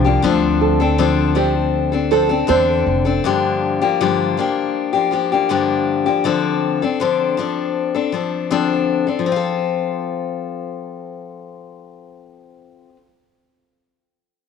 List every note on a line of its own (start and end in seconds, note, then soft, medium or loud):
0.00 0.17 C2 medium
0.04 0.23 F3 soft
0.04 0.23 A#3 soft
0.04 0.23 D4 soft
0.04 0.23 G4 soft
0.22 2.45 D2 medium
0.22 0.79 D3 medium
0.22 0.79 F3 medium
0.22 0.79 C4 medium
0.22 0.80 D4 medium
0.22 0.79 A4 medium
0.61 0.79 A4 medium
0.80 0.97 C4 soft
0.80 0.98 D4 soft
0.80 0.98 A4 medium
0.98 1.36 D3 medium
0.98 1.34 F3 medium
0.98 1.34 C4 medium
0.98 1.35 D4 medium
0.98 1.36 A4 medium
1.35 1.91 F3 medium
1.35 1.92 C4 medium
1.35 1.92 D4 medium
1.35 1.54 G4 medium
1.35 1.91 A4 medium
1.92 2.10 C4 soft
1.92 2.11 D4 soft
1.92 2.11 A4 soft
2.11 2.29 F3 medium
2.11 2.30 C4 medium
2.11 2.29 D4 medium
2.11 2.29 A4 medium
2.11 2.28 A4 medium
2.29 2.47 C4 soft
2.29 2.48 D4 soft
2.29 2.48 A4 medium
2.47 2.80 E2 medium
2.47 3.04 D3 medium
2.47 3.04 C4 medium
2.47 3.05 D4 medium
2.47 3.04 A4 medium
2.47 3.02 C5 medium
2.87 3.17 F1 medium
3.05 3.24 C4 soft
3.05 3.24 D4 soft
3.05 3.24 A4 soft
3.24 3.80 G2 medium
3.24 3.81 D3 medium
3.24 3.81 F3 medium
3.24 3.81 A#3 medium
3.24 3.80 D4 medium
3.24 3.80 G4 medium
3.81 4.00 F3 soft
3.81 4.00 A#3 soft
3.81 3.99 D4 soft
3.81 4.00 G4 medium
4.01 4.37 G2 medium
4.01 4.37 D3 medium
4.01 4.36 F3 medium
4.01 4.38 A#3 medium
4.01 4.37 D4 medium
4.01 4.38 G4 medium
4.37 4.93 F3 soft
4.37 4.93 A#3 medium
4.37 4.92 D4 medium
4.37 4.92 G4 medium
4.93 5.10 F3 soft
4.93 5.11 A#3 soft
4.93 5.12 D4 soft
4.93 5.12 G4 medium
5.11 5.30 F3 soft
5.11 5.31 A#3 medium
5.11 5.31 D4 medium
5.11 5.31 G4 medium
5.32 5.49 F3 soft
5.32 5.49 A#3 soft
5.32 5.50 D4 soft
5.32 5.50 G4 soft
5.49 6.06 G2 medium
5.49 6.06 D3 medium
5.49 6.06 F3 medium
5.49 6.05 A#3 medium
5.49 6.05 D4 medium
5.49 6.05 G4 medium
6.06 6.24 F3 soft
6.06 6.24 A#3 soft
6.06 6.24 D4 soft
6.06 6.25 G4 soft
6.24 6.81 D3 medium
6.24 6.81 F3 medium
6.24 6.81 C4 medium
6.24 6.81 D4 medium
6.24 6.81 A4 medium
6.82 7.00 C4 soft
6.82 7.00 D4 soft
6.82 7.00 A4 soft
7.00 7.37 D3 medium
7.00 7.36 F3 medium
7.00 7.37 C4 medium
7.00 7.38 D4 medium
7.00 7.39 A4 medium
7.37 7.94 F3 medium
7.37 7.94 C4 medium
7.37 7.94 D4 medium
7.37 7.93 A4 medium
7.94 8.12 C4 soft
7.94 8.13 D4 soft
7.94 8.13 A4 soft
8.12 8.50 F3 soft
8.12 8.50 C4 soft
8.12 8.51 D4 soft
8.12 8.51 A4 soft
8.51 9.07 D3 medium
8.51 9.07 F3 medium
8.51 9.07 C4 medium
8.51 9.06 D4 medium
8.51 9.06 A4 medium
9.07 9.25 C4 soft
9.07 9.26 D4 soft
9.07 9.26 A4 soft
9.19 12.89 F3 medium
9.26 12.96 C4 medium
9.32 13.02 F4 medium
9.36 13.06 A4 medium